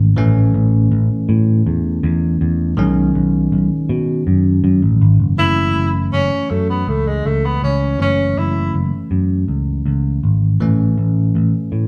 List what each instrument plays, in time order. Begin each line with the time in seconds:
Already playing: picked electric bass G#1, tine electric piano E3 A3 C#4
0.16 picked electric bass A1, tine electric piano E3 A3 C#4
0.54 picked electric bass A1
0.92 picked electric bass A1
1.29 picked electric bass A2
1.66 picked electric bass E2
2.03 picked electric bass E2
2.41 picked electric bass E2
2.77 picked electric bass B1, tine electric piano D#3 G#3 C#4
3.15 picked electric bass B1
3.52 picked electric bass B1
3.89 picked electric bass B2
4.27 picked electric bass F#2
4.64 picked electric bass F#2
4.82 picked electric bass A1
5.01 picked electric bass G#1
5.20 picked electric bass F#1
5.37 picked electric bass F#1, tine electric piano E3 A3 C#4, tenor saxophone E4
5.76 picked electric bass F#1
6.13 picked electric bass F#1, tenor saxophone C#4
6.50 picked electric bass F#2, tenor saxophone A3
6.70 tenor saxophone B3
6.88 picked electric bass C#2, tenor saxophone A3
7.08 tenor saxophone G#3
7.25 picked electric bass C#2, tenor saxophone A3
7.45 tenor saxophone B3
7.63 picked electric bass C#2, tenor saxophone C#4
7.99 picked electric bass F#1, tine electric piano E3 A3 C#4, tenor saxophone C#4
8.37 picked electric bass F#1, tenor saxophone E4
8.74 picked electric bass F#1
9.11 picked electric bass F#2
9.48 picked electric bass C#2
9.86 picked electric bass C#2
10.23 picked electric bass G#1
10.60 picked electric bass A1, tine electric piano E3 A3 C#4
10.98 picked electric bass A1
11.35 picked electric bass A1
11.72 picked electric bass A2